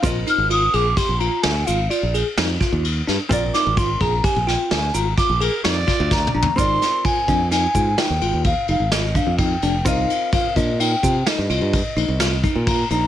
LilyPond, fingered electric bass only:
\new Staff \with { instrumentName = "Fingered electric bass" } { \clef bass \time 7/4 \key bes \mixolydian \tempo 4 = 128 bes,,8 r16 aes,,8. bes,,8 r16 bes,,8 r16 d,8 aes,,8 r16 bes,,8 r16 f,8 r16 ees,8. g,16 r16 | bes,,8 r16 aes,,8. bes,,8 r16 bes,,8 r16 d,8 aes,,8 r16 bes,,8 r16 f,8 r16 d,8. bes,,16 r16 | aes,,8 r4 f,4 aes,8 r16 ees,16 aes,,16 ees,8 r16 f,,16 aes,,4 f,8. f,,8 | c,8 r4 bes,4 c8 r16 g,16 c,16 g,8 r16 bes,,16 c,4 bes,8. bes,,8 | }